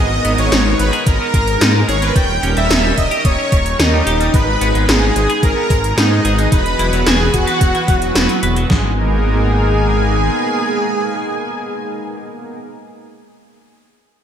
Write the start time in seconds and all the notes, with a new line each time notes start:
Already playing: G#1 G#3 B3 D#4 A#4 D#5
0.00 D#6
0.25 G#1 B3, closed hi-hat
0.38 G#1 G#3 C#5 C#6, closed hi-hat
0.52 G#1 D#4, snare, closed hi-hat
0.66 G#3
0.79 G#1 B4 B5, closed hi-hat
0.93 G#4, closed hi-hat
1.06 G#1 G#3 A#4 A#5, kick, closed hi-hat
1.20 B3
1.34 G#1 G#3, kick, closed hi-hat
1.48 closed hi-hat
1.61 G#2 D#4, snare, closed hi-hat
1.75 G#3
1.88 G#1 G#4 C#5 C#6, closed hi-hat
2.02 G#3 B4 B5, closed hi-hat
2.15 D#1 G3 C#4 D#4 G5 G6, kick, closed hi-hat
2.43 D#1 C#4, closed hi-hat
2.57 D#1 G3 E5 E6, closed hi-hat
2.70 D#1 D#4, snare, closed hi-hat
2.84 G3
2.98 D#1 D#5 D#6, kick, closed hi-hat
3.11 G4, closed hi-hat
3.25 D#1 G3 C#5 C#6, kick, closed hi-hat
3.39 C#4
3.52 D#1 G3, kick, closed hi-hat
3.66 closed hi-hat
3.79 D#2 D#4 D#5, snare, closed hi-hat
3.93 G3
4.07 D#1 G4, closed hi-hat
4.20 G3, closed hi-hat
4.34 G#1 G#3 B3 G#4 B4 B5, kick, closed hi-hat
4.61 G#1 B3, closed hi-hat
4.75 G#1 G#3, closed hi-hat
4.89 G#1 D#4 G#4 G#5, snare, closed hi-hat
5.02 G#3
5.16 G#1, closed hi-hat
5.29 G#4, closed hi-hat
5.43 G#1 G#3 A#4 A#5, kick, closed hi-hat
5.57 B3
5.70 G#1 G#3, kick, closed hi-hat
5.84 closed hi-hat
5.97 G#2 D#4 D#5, snare, closed hi-hat
6.11 G#3
6.25 G#1 G#4, closed hi-hat
6.38 G#3, closed hi-hat
6.52 E1 E3 F#3 F#4 B4 B5, kick, closed hi-hat
6.66 closed hi-hat
6.79 E1 E4, closed hi-hat
6.93 E1 F#3, closed hi-hat
7.07 E1 F#4 G#4 G#5, snare, closed hi-hat
7.20 F#3
7.34 E1 F#4 F#5, kick, closed hi-hat
7.47 B4, closed hi-hat
7.61 E1 F#3, kick, closed hi-hat
7.75 E4, closed hi-hat
7.88 E1 F#3, kick, closed hi-hat
8.02 closed hi-hat
8.15 E1 F#4, snare, closed hi-hat
8.29 F#3, closed hi-hat
8.43 E1 B4, closed hi-hat
8.56 F#3, closed hi-hat
8.70 G#1 G#3 A#3 B3 D#4 G#4 A#4 G#5, kick, snare